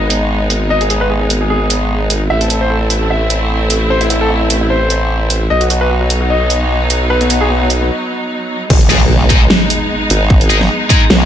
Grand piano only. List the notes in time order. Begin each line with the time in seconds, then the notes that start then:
Already playing: D#5
0.70 D#5
0.81 G#4
0.90 G#4
1.01 B4
1.10 G#4
1.21 G#4
1.41 G#4
1.50 G#4
2.30 E5
2.41 A4
2.50 A4
2.61 C5
2.70 A4
2.81 A4
3.01 A4
3.10 E5
3.90 C5
4.01 E4
4.10 E4
4.21 A4
4.30 E4
4.41 E4
4.61 E4
4.70 C5
5.50 D#5
5.61 F#4
5.70 F#4
5.81 B4
5.90 F#4
6.01 F#4
6.21 F#4
6.30 D#5
7.10 B4
7.21 B3
7.30 B3
7.41 G#4
7.50 B3
7.61 B3
7.81 B3